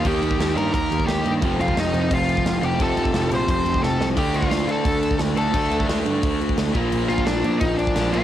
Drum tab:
CC |x-x-x-x-x-x-x-x-|x-x-x-x-x-x-x-x-|x-x-x-x-x-x-----|x-x-x-x-x-x-x-x-|
SD |----o-------o---|----o-------o---|----o-------o-o-|----o-------o---|
BD |o--o----o--o----|o--o----o--o----|o--o----o--o----|o--o----o--o----|

CC |x-x-x-x-x-x-x-x-|x-x-x-x-x-x-x-x-|
SD |----o-------o---|----o-------o---|
BD |o--o----o--o--o-|---o----o--o----|